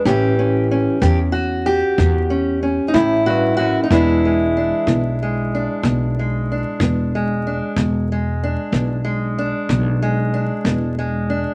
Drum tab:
BD |o--o--o--o--|o--o--o--o--|o--o--o--o--|